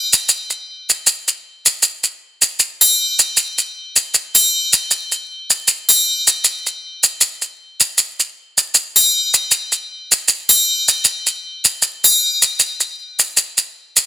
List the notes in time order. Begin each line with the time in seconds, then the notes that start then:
0.13 maracas
0.29 maracas
0.50 maracas
0.89 maracas
1.07 maracas
1.28 maracas
1.66 maracas
1.82 maracas
2.04 maracas
2.42 maracas
2.59 maracas
2.81 triangle, maracas
3.19 maracas
3.37 maracas
3.58 maracas
3.96 maracas
4.14 maracas
4.35 triangle, maracas
4.73 maracas
4.91 maracas
5.12 maracas
5.50 maracas
5.68 maracas
5.89 triangle, maracas
6.27 maracas
6.44 maracas
6.66 maracas
7.03 maracas
7.21 maracas
7.42 maracas
7.80 maracas
7.98 maracas
8.20 maracas
8.58 maracas
8.74 maracas
8.96 triangle, maracas
9.34 maracas
9.51 maracas
9.72 maracas
10.12 maracas
10.28 maracas
10.49 triangle, maracas
10.88 maracas
11.05 maracas
11.27 maracas
11.65 maracas
11.82 maracas
12.04 triangle, maracas
12.42 maracas
12.59 maracas
12.80 maracas
13.19 maracas
13.37 maracas
13.58 maracas
13.96 maracas